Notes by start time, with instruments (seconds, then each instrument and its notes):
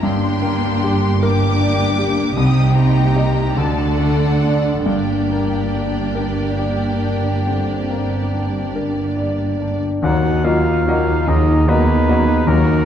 0.03 double bass section G1, grand piano G2, cello section G2, french horn section A#3 D4, viola section A#3 D4, violin section G4 G5 C6
0.42 grand piano A#3
0.83 grand piano G4
1.23 viola section A#3 D4, violin section G4 G5 D6, grand piano A#4
1.61 grand piano D5
1.99 grand piano G4
2.36 grand piano C2, double bass section C2, cello section C3, french horn section G3 D#4, viola section C4 D#4, violin section G4 G5 D#6
2.76 grand piano C4, violin section A#5
2.94 viola section A#3
3.15 grand piano G4 D#5
3.55 double bass section D2, grand piano D2, cello section D3, french horn section A3 D4, viola section A3 D4, violin section A4 D5 A5
3.98 grand piano A3, violin section F#5
4.42 grand piano D4 D5
4.85 double bass section G1, cello section G2, grand piano G2, viola section A#3 D4, french horn section A#3, violin section G4 D5 G5
5.31 grand piano A#3
5.74 grand piano D4
6.15 french horn section A#3, grand piano A#4
6.59 grand piano D5
7.04 grand piano D4
7.46 grand piano D3, french horn section C4
7.90 grand piano A#3
8.33 grand piano D4
8.74 french horn section D4, grand piano A#4
9.17 grand piano D5
9.61 grand piano D4
10.03 grand piano D#2 D#3, double bass section D#2, tuba D#2, trombone section D#3 D#4, viola section F#3, violin section A#3 F#4, clarinet D#4, french horn section F#4, oboe F#5, flute A#5
10.24 viola section D#3, violin section D#4
10.44 viola section F#3, grand piano A#3 F#4 D#5, violin section A#3 F#4, french horn section F4, oboe F5
10.65 viola section D#3, violin section D#4
10.86 viola section F#3, violin section A#3 F#4, grand piano A#3 F#4 D#5
11.07 viola section D#3, violin section D#4
11.27 grand piano D#2 D#3, trombone section D#3 D#4, viola section F#3, violin section A#3 F#4, french horn section D#4, clarinet G#4, oboe D#5
11.49 viola section D#3, violin section D#4
11.67 viola section F#3, violin section A#3 F#4, grand piano A#3 F#4 D#5, french horn section B3, oboe B4
11.87 viola section D#3, violin section D#4
12.08 viola section F#3, violin section A#3 F#4, grand piano A#3 F#4 D#5
12.27 viola section D#3, violin section D#4
12.46 grand piano D#2 D#3, trombone section D#3 D#4, viola section F#3, french horn section A#3, violin section A#3 F#4, cello section F#4, clarinet F#4, oboe A#4
12.66 viola section D#3, violin section D#4